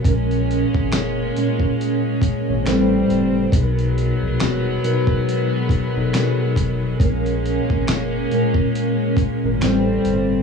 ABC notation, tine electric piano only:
X:1
M:4/4
L:1/16
Q:"Swing 16ths" 1/4=69
K:A#phr
V:1 name="Tine electric piano"
[A,,G,CA]4- [A,,G,CA] z [A,,G,Cc]4- [A,,G,Cc] [A,,G,Cc] [=A,,=G,=CB]4 | [B,,F,DGA]4- [B,,F,DGA] z [B,,F,DA]4- [B,,F,DA] [B,,F,D=A^A]4- [B,,F,D=A^A] | [A,,G,B,CA]4- [A,,G,B,CA] z [A,,G,CA]4- [A,,G,CA] [A,,G,CA] [=A,,=G,=CB]4 |]